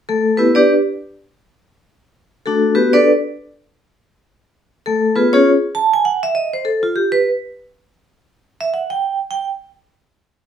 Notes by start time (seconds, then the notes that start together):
0.09 A3 A4
0.37 B3 E4 G4 B4
0.55 D4 G4 B4 D5
2.46 A3 D4 F#4 A4
2.75 B3 F#4 G4 B4
2.93 D4 A4 B4 D5
4.86 A3 A4
5.16 B3 F4 G#4 B4
5.33 C#4 F4 G#4 C#5
5.75 A5
5.94 G#5
6.05 F#5
6.23 E5
6.35 D#5
6.53 C5
6.65 A4
6.83 F4
6.96 G4
7.12 B4
8.61 E5
8.74 F#5
8.90 G5
9.31 G5